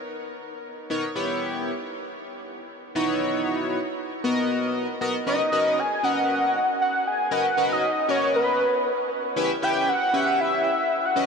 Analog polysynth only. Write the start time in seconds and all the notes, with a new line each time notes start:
0.90 B3 D#4 A#4 C#5
1.15 B3 E4 G4 C#5
2.95 B3 D#4 E4 F#4 C#5
4.24 B3 F#4 A#4 D#5
5.01 B3 F#4 A#4 D#5
5.27 C#4 F#4 A#4 B4 D#5
5.52 C#4 F#4 A#4 B4 D#5
6.03 C#4 F#4 A#4 B4 D#5
7.31 C#4 F#4 A#4 B4 D#5
7.57 C#4 F#4 A#4 B4 D#5
8.08 C#4 F#4 A#4 B4 D#5
9.36 C#4 E4 G4 B4 E5
9.62 C#4 E4 G4 B4 E5
10.13 C#4 E4 G4 B4 E5
11.16 C#4 E4 F#4 B4 D#5